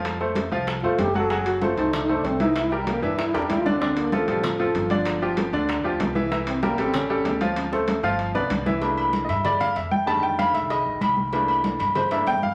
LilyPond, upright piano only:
<<
  \new Staff \with { instrumentName = "Upright piano" } { \time 4/4 \key c \mixolydian \tempo 4 = 192 <f f' f''>8 <a a' c''>4 <f f' f''>4 <a a' c''>4 <fis fis' fis''>8 | <fis fis' fis''>4 <a a' c''>8 <a a' c''>4 <a a' c''>4 <e e' e''>8~ | <e e' e''>8 <g g' bes'>4 <e e' e''>4 <g g' bes'>4 <d d' d''>8 | <d d' d''>4 <f f' a'>8 <f f' a'>4 <f f' a'>4 <d d' d''>8~ |
<d d' d''>8 <f f' g'>4 <d d' d''>4 <f f' g'>4 <e e' e''>8 | <e e' e''>4 <g g' bes'>8 <g g' a'>4 <g g' a'>4 <f f' f''>8~ | <f f' f''>8 <a a' c''>4 <f f' f''>4 <b b' d''>4 <e e' e''>8 | r4. <ees'' e''>8 d''8 f''8 e''8 g''8 |
a''8 g''8 f''8 e''8 ees''4. r8 | r2 c''8 e''8 g''8 f''8 | }
  \new Staff \with { instrumentName = "Upright piano" } { \time 4/4 \key c \mixolydian r1 | r1 | r1 | r1 |
r1 | r1 | r1 | <e a bes d'>4. r2 r8 |
<d ees g a>1 | <e a bes d'>4. r4 <e a bes d'>8 r4 | }
>>